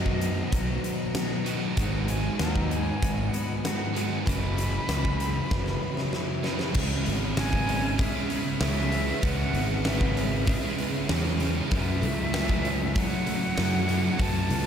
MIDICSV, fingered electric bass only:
0, 0, Header, 1, 2, 480
1, 0, Start_track
1, 0, Tempo, 621762
1, 1364, Time_signature, 4, 2, 24, 8
1, 11321, End_track
2, 0, Start_track
2, 0, Title_t, "Fingered electric bass"
2, 0, Program_c, 0, 33
2, 0, Note_on_c, 0, 42, 90
2, 310, Note_off_c, 0, 42, 0
2, 403, Note_on_c, 0, 35, 85
2, 599, Note_off_c, 0, 35, 0
2, 1369, Note_on_c, 0, 32, 96
2, 1759, Note_off_c, 0, 32, 0
2, 1851, Note_on_c, 0, 39, 88
2, 2241, Note_off_c, 0, 39, 0
2, 2335, Note_on_c, 0, 32, 80
2, 2528, Note_off_c, 0, 32, 0
2, 3296, Note_on_c, 0, 30, 97
2, 3685, Note_off_c, 0, 30, 0
2, 3771, Note_on_c, 0, 37, 80
2, 4161, Note_off_c, 0, 37, 0
2, 4257, Note_on_c, 0, 30, 80
2, 4449, Note_off_c, 0, 30, 0
2, 5212, Note_on_c, 0, 37, 101
2, 5452, Note_on_c, 0, 32, 97
2, 5464, Note_off_c, 0, 37, 0
2, 6232, Note_off_c, 0, 32, 0
2, 6643, Note_on_c, 0, 37, 86
2, 7035, Note_off_c, 0, 37, 0
2, 7128, Note_on_c, 0, 37, 99
2, 7361, Note_on_c, 0, 32, 104
2, 7372, Note_off_c, 0, 37, 0
2, 8144, Note_off_c, 0, 32, 0
2, 8563, Note_on_c, 0, 40, 89
2, 8954, Note_off_c, 0, 40, 0
2, 9049, Note_on_c, 0, 42, 100
2, 9282, Note_on_c, 0, 37, 109
2, 9294, Note_off_c, 0, 42, 0
2, 10063, Note_off_c, 0, 37, 0
2, 10480, Note_on_c, 0, 42, 87
2, 10870, Note_off_c, 0, 42, 0
2, 10961, Note_on_c, 0, 42, 97
2, 11190, Note_on_c, 0, 37, 103
2, 11201, Note_off_c, 0, 42, 0
2, 11321, Note_off_c, 0, 37, 0
2, 11321, End_track
0, 0, End_of_file